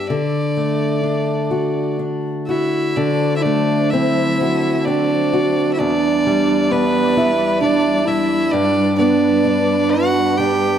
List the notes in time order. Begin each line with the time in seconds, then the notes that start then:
Already playing: B3 D4 G4
0.07 D3 D5
0.57 A3
1.03 D4
1.51 F#4
1.99 D4
2.47 E4 F#4 E5
2.96 D3 F#3 D4 C5 D5
3.36 E4 E5
3.42 A3 D4 D5
3.90 C4 E4 E5
4.41 F#4
4.85 C4 D4 D5
5.33 F#4
5.73 E4 E5
5.79 E2 G3 D4 E4 D5
6.27 G3
6.71 B3 D4 B4
7.17 E4
7.60 D4 D5
8.06 E4 E5
8.51 G2 D4 B4 D5
8.96 B3 D4 D5
9.45 D4
9.89 F#4 F#5
10.37 D4 G4 G5